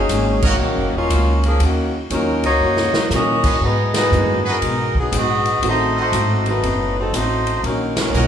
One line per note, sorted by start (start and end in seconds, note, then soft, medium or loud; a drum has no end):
0.00 0.41 F#3 medium
0.00 0.41 C#4 medium
0.00 0.41 D#4 medium
0.00 0.41 G#4 medium
0.09 0.59 G#1 medium
0.09 0.45 D#3 soft
0.09 0.46 A#3 medium
0.09 0.46 C#4 medium
0.09 0.46 F#4 medium
0.09 kick soft
0.09 hi-hat pedal medium
0.09 ride medium
0.42 1.07 D#3 medium
0.42 0.95 D#3 medium
0.42 1.07 F#3 soft
0.42 1.07 A#3 soft
0.42 0.95 A#3 medium
0.42 1.08 C#4 soft
0.42 0.94 C#4 medium
0.42 0.55 F#4 medium
0.42 0.95 F#4 medium
0.42 0.55 A#4 medium
0.42 0.55 C#5 medium
0.42 0.55 D#5 loud
0.42 1.08 F5 medium
0.42 kick medium
0.42 crash medium
0.60 0.77 A#1 medium
0.60 0.96 D#3 soft
0.60 0.96 A#3 soft
0.60 0.97 C#4 soft
0.60 0.97 F#4 soft
0.77 0.93 F#1 medium
0.94 1.09 D#1 medium
0.94 1.41 A#3 medium
0.94 1.41 C#4 medium
0.94 1.42 D#4 medium
0.94 1.41 F4 medium
1.10 1.59 C#2 medium
1.10 1.46 D#3 medium
1.10 1.47 A#3 medium
1.10 1.47 C#4 medium
1.10 1.47 F#4 medium
1.10 kick soft
1.10 hi-hat pedal medium
1.10 ride medium
1.43 1.62 F3 medium
1.43 1.61 A#3 medium
1.43 1.61 C#4 medium
1.43 1.62 G#4 medium
1.43 ride soft
1.60 2.09 D#2 medium
1.60 1.96 D#3 soft
1.60 1.95 D#3 medium
1.60 1.95 A#3 medium
1.60 1.97 A#3 soft
1.60 1.95 C#4 medium
1.60 1.95 F#4 medium
1.60 kick soft
1.60 ride medium
1.64 1.97 C#4 soft
1.64 1.98 F#4 medium
2.10 2.27 F2 medium
2.10 2.41 D#3 soft
2.10 2.46 D#3 soft
2.10 2.42 F#3 medium
2.10 2.41 F#3 soft
2.10 2.41 A#3 soft
2.10 2.47 A#3 medium
2.10 2.42 C#4 medium
2.10 2.42 C#4 soft
2.10 2.47 C#4 medium
2.10 2.42 D#4 medium
2.10 2.42 F4 medium
2.10 2.42 A#4 medium
2.10 kick soft
2.10 hi-hat pedal medium
2.10 ride medium
2.14 2.48 F#4 medium
2.27 2.43 D#2 medium
2.43 2.59 C#2 medium
2.43 3.08 A#3 medium
2.43 3.08 D#4 medium
2.43 3.08 F#4 medium
2.43 3.08 C#5 medium
2.43 ride soft
2.60 2.92 F#2 medium
2.60 2.97 D#3 soft
2.60 2.97 A#3 soft
2.60 2.98 C#4 soft
2.65 2.98 F#4 soft
2.77 snare medium
2.94 muted upright bass stroke soft
2.94 snare medium
3.10 3.60 A#2 medium
3.10 3.47 D#3 medium
3.10 3.47 A#3 medium
3.10 3.47 C#4 medium
3.10 3.63 C#4 medium
3.10 3.63 D#5 medium
3.10 snare medium
3.10 hi-hat pedal medium
3.14 3.48 F#4 medium
3.14 3.62 F#4 medium
3.14 3.63 A#4 medium
3.44 3.56 F#4 medium
3.44 3.56 G#4 medium
3.44 3.56 B4 medium
3.44 3.56 D#5 medium
3.44 kick medium
3.44 crash medium
3.61 4.10 G#2 medium
3.61 3.97 G#2 soft
3.61 3.97 F#3 soft
3.61 3.94 G#3 medium
3.61 3.98 B3 soft
3.61 3.94 D#4 medium
3.61 3.93 F#4 medium
3.61 3.93 B4 medium
3.61 kick soft
3.65 3.98 D#4 soft
3.94 4.43 G#3 medium
3.94 4.42 D#4 medium
3.94 4.43 F#4 medium
3.94 4.43 B4 medium
3.94 snare medium
3.94 ride medium
4.11 4.60 F#2 medium
4.11 4.47 G#2 soft
4.11 4.42 D#3 soft
4.11 4.48 F#3 medium
4.11 4.42 G#3 soft
4.11 4.42 A#3 soft
4.11 4.43 B3 soft
4.11 4.48 B3 medium
4.11 4.48 D#4 medium
4.11 4.43 F#4 medium
4.11 hi-hat pedal soft
4.45 4.97 G#3 medium
4.45 4.97 D#4 medium
4.45 4.57 F#4 medium
4.45 4.97 F#4 medium
4.45 4.57 G#4 medium
4.45 4.97 A#4 medium
4.45 4.57 B4 medium
4.45 4.57 D#5 medium
4.62 5.11 B1 medium
4.62 4.97 G#2 soft
4.62 4.98 F#3 soft
4.62 4.98 B3 soft
4.62 4.99 D#4 soft
4.62 kick soft
4.62 ride medium
4.95 5.13 B3 medium
4.95 5.13 G#4 medium
4.95 kick medium
4.99 5.13 F#3 medium
4.99 5.13 D#4 medium
5.12 5.61 A#1 medium
5.12 5.48 G#2 medium
5.12 5.48 F#3 medium
5.12 5.48 B3 medium
5.12 5.48 D#4 medium
5.12 kick soft
5.12 hi-hat pedal medium
5.12 ride medium
5.16 5.65 B3 medium
5.16 5.65 F#4 medium
5.16 5.65 G#4 medium
5.16 5.65 D#5 medium
5.45 ride soft
5.62 6.11 A1 medium
5.62 5.97 A2 soft
5.62 5.93 D#3 medium
5.62 5.98 F#3 soft
5.62 5.93 A3 medium
5.62 5.93 B3 medium
5.62 5.93 C4 medium
5.62 5.98 C4 soft
5.62 5.99 D#4 soft
5.62 5.93 F#4 medium
5.62 kick soft
5.62 ride medium
5.67 5.96 A3 medium
5.67 5.96 D#4 medium
5.67 5.96 F#4 medium
5.67 5.96 C5 medium
5.96 6.60 F#4 medium
5.96 6.45 F#4 medium
5.96 6.60 A4 medium
5.96 6.60 C5 medium
5.96 6.60 D#5 medium
6.00 6.45 A3 medium
6.00 6.45 D#4 medium
6.00 6.45 C5 medium
6.12 6.61 G#1 medium
6.12 6.48 A2 medium
6.12 6.48 F#3 soft
6.12 6.48 C4 medium
6.12 6.49 D#4 medium
6.12 kick soft
6.12 hi-hat pedal medium
6.12 ride medium
6.46 6.62 D#3 soft
6.46 6.62 A3 soft
6.46 6.98 A3 medium
6.46 6.62 B3 soft
6.46 6.62 C4 soft
6.46 6.97 D#4 medium
6.46 6.63 F#4 medium
6.46 6.98 F#4 medium
6.46 6.98 B4 medium
6.46 ride soft
6.63 7.12 F#1 medium
6.63 6.98 A2 soft
6.63 6.99 F#3 soft
6.63 6.99 C4 soft
6.63 7.00 D#4 soft
6.63 kick soft
6.63 ride medium
6.98 7.13 F#3 medium
6.98 7.14 C4 medium
6.98 7.13 D#4 medium
6.98 7.14 A4 medium
7.13 7.62 A1 medium
7.13 7.49 A2 soft
7.13 7.49 F#3 medium
7.13 7.64 A3 medium
7.13 7.50 C4 medium
7.13 7.64 D#4 medium
7.13 7.50 D#4 medium
7.13 7.64 F#4 medium
7.13 7.64 C5 medium
7.13 kick soft
7.13 hi-hat pedal medium
7.13 ride medium
7.47 ride soft
7.63 8.12 A#1 medium
7.63 7.99 D#3 soft
7.63 7.96 F#3 medium
7.63 8.00 A#3 soft
7.63 7.96 C#4 medium
7.63 8.00 C#4 soft
7.63 7.96 D#4 medium
7.63 8.01 F#4 soft
7.63 7.96 A#4 medium
7.63 kick soft
7.63 ride medium
7.96 8.27 F#3 medium
7.96 8.27 C#4 medium
7.96 8.27 D#4 medium
7.96 8.27 A#4 medium
7.96 snare medium
7.96 ride medium
8.13 8.27 B1 medium
8.13 8.27 D#3 soft
8.13 8.27 D#3 medium
8.13 8.27 F#3 soft
8.13 8.27 A#3 soft
8.13 8.27 A#3 medium
8.13 8.27 C#4 soft
8.13 8.27 C#4 medium
8.13 8.27 F4 medium
8.13 8.27 F#4 medium
8.13 8.27 A#4 medium
8.13 8.27 C#5 medium
8.13 8.27 D#5 medium
8.13 hi-hat pedal medium